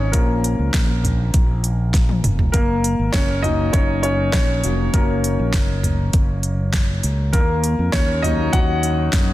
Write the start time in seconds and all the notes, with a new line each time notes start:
Already playing: G#1 F#3 A#3 C#4 D#4 C#5 D#5
0.12 A#1 F3 A#3 C#4 A#4, kick, closed hi-hat
0.44 closed hi-hat
0.59 C#2
0.74 A#1, kick, snare, clap, closed hi-hat
1.04 closed hi-hat, floor tom
1.34 A#1, kick, closed hi-hat
1.64 closed hi-hat
1.94 kick, snare, closed hi-hat
2.09 high tom
2.24 F1, closed hi-hat, mid tom
2.39 floor tom
2.52 F#1 A#3 A#4, kick, closed hi-hat
2.84 closed hi-hat
2.99 G#1
3.12 F#1 C#4 C#5, kick, snare, clap, closed hi-hat
3.42 F#3 A#3 C#4 D#4 D#5, closed hi-hat, floor tom
3.73 F#1 C#4 C#5, kick, closed hi-hat
4.03 C#4 C#5, closed hi-hat
4.33 A#1 C#4 C#5, kick, snare, clap, closed hi-hat
4.64 F1 F#3 A#3 C#4, closed hi-hat
4.94 F#1 F#3 A#3 C#4 A#4, kick, closed hi-hat
5.24 closed hi-hat
5.39 A#1
5.54 F#1, kick, snare, clap, closed hi-hat
5.83 closed hi-hat, floor tom
6.13 F#1, kick, closed hi-hat
6.43 closed hi-hat
6.73 kick, snare, clap, closed hi-hat
7.03 C#2, closed hi-hat
7.33 D#2 A#3 A#4, kick, closed hi-hat
7.64 closed hi-hat
7.79 F2
7.92 D#2 C#4 C#5, kick, snare, clap, closed hi-hat
8.22 F#3 A#3 D#4 D#5, closed hi-hat, floor tom
8.53 D#2 F#4 F#5, kick, closed hi-hat
8.83 closed hi-hat
9.13 F#2, kick, snare, clap, closed hi-hat